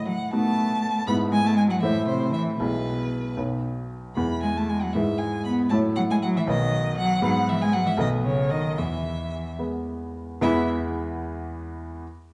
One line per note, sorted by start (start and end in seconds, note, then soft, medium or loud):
0.00 0.30 A2 medium
0.06 0.14 F#3 medium
0.06 0.32 F#5 medium
0.31 1.05 A3 medium
0.31 1.03 B3 medium
0.31 1.04 D#4 soft
0.31 1.04 F#4 soft
0.31 1.06 A5 loud
1.07 1.81 G#2 medium
1.07 1.15 B3 medium
1.07 1.79 B3 medium
1.07 1.79 E4 soft
1.07 1.79 B4 medium
1.07 1.15 B5 loud
1.32 1.37 G#3 medium
1.32 1.48 G#5 loud
1.43 1.56 A3 medium
1.43 1.57 A5 loud
1.55 1.70 G#3 medium
1.55 1.62 G#5 medium
1.68 1.82 F#3 medium
1.68 1.75 F#5 medium
1.81 2.58 A2 medium
1.81 2.06 E3 medium
1.81 2.56 A3 medium
1.81 2.56 E4 medium
1.81 2.57 C5 medium
1.81 2.07 E5 medium
2.07 2.34 C3 medium
2.07 2.33 C5 medium
2.33 2.58 E3 medium
2.33 2.42 E5 medium
2.59 3.36 B1 medium
2.59 3.36 B2 medium
2.59 3.34 G#3 soft
2.59 3.34 E4 soft
2.59 3.36 B4 medium
2.59 3.35 B4 soft
3.37 4.14 B1 medium
3.37 4.12 F#3 soft
3.37 4.12 D#4 soft
3.37 4.13 B4 soft
4.15 4.93 E2 medium
4.15 4.91 G#3 soft
4.15 4.23 B3 medium
4.15 4.91 E4 soft
4.15 4.92 B4 soft
4.15 4.41 B5 medium
4.43 4.48 G#3 medium
4.43 4.59 G#5 medium
4.56 4.70 A3 medium
4.56 4.71 A5 medium
4.68 4.84 G#3 medium
4.68 4.83 G#5 medium
4.82 4.94 F#3 medium
4.82 4.95 F#5 medium
4.93 5.69 G#2 medium
4.93 5.02 E3 medium
4.93 5.67 G#3 soft
4.93 5.68 E4 soft
4.93 5.68 B4 soft
4.93 5.20 E5 medium
5.18 5.46 G#3 medium
5.18 5.44 G#5 medium
5.44 5.71 B3 medium
5.44 5.52 B5 medium
5.70 6.45 A2 medium
5.70 6.44 F#3 soft
5.70 5.79 A3 medium
5.70 6.44 E4 soft
5.70 6.44 C#5 soft
5.70 5.78 A5 medium
5.96 6.02 F#3 medium
5.96 6.01 F#5 loud
6.11 6.15 G#3 medium
6.11 6.15 G#5 medium
6.22 6.38 F#3 medium
6.22 6.27 F#5 medium
6.37 6.50 E3 medium
6.37 6.42 E5 medium
6.47 7.20 B1 medium
6.47 6.98 D#3 medium
6.47 7.19 F#3 medium
6.47 7.19 B3 medium
6.47 7.19 B4 medium
6.47 6.97 D#5 loud
6.98 7.23 F#3 loud
6.98 7.22 F#5 loud
7.22 7.96 G#2 medium
7.22 7.32 F#3 loud
7.22 7.94 G#3 medium
7.22 7.95 B3 medium
7.22 7.95 B4 medium
7.22 7.50 F#5 loud
7.49 7.61 E3 medium
7.49 7.64 E5 medium
7.61 7.73 G#3 medium
7.61 7.75 G#5 loud
7.73 7.80 F#3 medium
7.73 7.89 F#5 loud
7.86 7.91 E3 medium
7.86 7.99 E5 medium
7.97 8.75 B1 medium
7.97 8.07 D#3 medium
7.97 8.73 A3 medium
7.97 8.73 B3 medium
7.97 8.74 B4 medium
7.97 8.08 D#5 medium
8.24 8.53 C#3 medium
8.24 8.52 C#5 medium
8.51 8.80 D#3 medium
8.51 8.80 D#5 medium
8.78 9.57 E2 medium
8.78 9.59 E3 medium
8.78 9.59 E5 medium
9.59 10.38 G#3 soft
9.59 10.38 B3 soft
9.59 10.38 B4 soft
10.41 10.72 E2 medium
10.41 10.72 E3 medium
10.41 10.72 G#3 medium
10.41 10.72 B3 medium
10.41 10.72 E4 medium
10.41 10.72 B4 medium
10.41 10.72 E5 medium